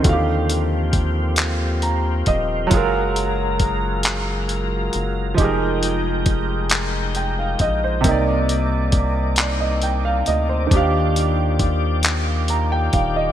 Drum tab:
HH |xxxxxx|xxxxxx|xxxxxx|xxxxxx|
CP |---x--|---x--|---x--|---x--|
BD |o-o--o|o-o---|o-o--o|o-o---|

HH |xxxxxx|
CP |---x--|
BD |o-o--o|